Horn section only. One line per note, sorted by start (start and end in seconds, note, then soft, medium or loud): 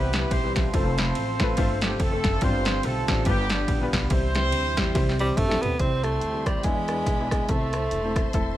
0.00 0.31 B3 loud
0.00 0.10 C4 medium
0.00 0.69 E4 medium
0.00 0.69 G4 medium
0.00 0.31 B4 loud
0.31 0.55 C4 loud
0.31 0.55 C5 loud
0.56 1.79 C4 medium
0.56 1.79 F4 medium
0.56 1.79 A4 medium
0.56 1.79 C5 loud
1.83 2.00 G3 medium
1.83 2.00 G4 medium
2.00 2.42 A3 medium
2.00 2.39 C4 medium
2.00 2.39 F4 medium
2.00 2.42 A4 loud
2.43 2.84 C4 loud
2.43 2.83 F4 medium
2.43 2.84 C5 loud
2.84 3.26 A3 medium
2.84 3.24 C4 medium
2.84 3.24 F4 medium
2.84 3.26 A4 loud
3.25 3.82 G3 loud
3.25 4.07 B3 medium
3.25 4.07 D4 medium
3.25 3.82 G4 loud
4.10 5.33 C4 loud
4.10 5.33 E4 medium
4.10 5.33 G4 medium
4.10 5.33 C5 loud